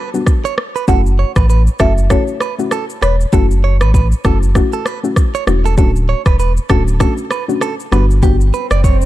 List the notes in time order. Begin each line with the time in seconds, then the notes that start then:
0.14 G3 B3 D4 F#4, shaker
0.26 kick, cross-stick, shaker
0.45 C#5, shaker
0.58 cross-stick
0.76 B4, shaker
0.88 F#1 A3 C#4 E4 F#4 A4 F#5, kick, shaker
1.06 shaker
1.19 C#5
1.36 A1 B4, kick, cross-stick, shaker
1.50 B4, shaker
1.67 shaker
1.79 F#1 A3 C#4 E4 F#4 A4 E5, kick, cross-stick, shaker
1.98 shaker
2.10 A3 C#4 E4 F#4 A4 C#5, kick, cross-stick, shaker
2.27 shaker
2.40 B4, cross-stick, shaker
2.59 A3 C#4 E4 F#4, shaker
2.71 A4, cross-stick, shaker
2.90 shaker
3.02 E1 B4 C#5, cross-stick, shaker
3.21 shaker
3.33 F#1 A3 C#4 E4 F#4 A4, kick, shaker
3.51 shaker
3.64 C#5
3.81 A1 B4, cross-stick, shaker
3.94 B4, kick, shaker
4.12 shaker
4.24 F#1 A3 C#4 E4 F#4 A4, kick, cross-stick, shaker
4.43 shaker
4.55 A3 C#4 E4 F#4, kick, cross-stick, shaker
4.73 A4, shaker
4.86 B4, cross-stick, shaker
5.03 A3 C#4 E4 F#4, shaker
5.16 kick, cross-stick, shaker
5.35 C#5, shaker
5.47 E1 A3 C#4 E4 F#4, cross-stick, shaker
5.66 A4, shaker
5.77 D1 A3 C#4 D4 F#4 A4, kick, shaker
5.96 shaker
6.09 C#5
6.26 E1 B4, kick, cross-stick, shaker
6.39 B4, shaker
6.57 shaker
6.69 D1 A3 C#4 D4 F#4 A4, kick, cross-stick, shaker
6.88 shaker
7.00 A3 C#4 D4 F#4 A4, kick, cross-stick, shaker
7.17 shaker
7.31 B4, cross-stick, shaker
7.48 A3 C#4 D4 F#4, shaker
7.61 A4, cross-stick, shaker
7.80 shaker
7.92 G1 G3 B3 D4 F#4 B4, cross-stick, shaker
8.11 shaker
8.22 G3 B3 D4 F#4 G4, kick, swell, shaker
8.41 shaker
8.54 B4, shaker
8.71 F#1 D5, cross-stick, shaker
8.84 C#5, kick, shaker
9.02 shaker